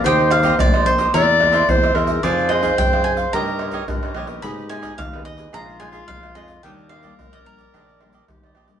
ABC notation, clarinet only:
X:1
M:4/4
L:1/8
Q:1/4=109
K:Eb
V:1 name="Clarinet"
c3 z d2 c B | c4 B2 B2 | G3 z F4 | B6 G G |]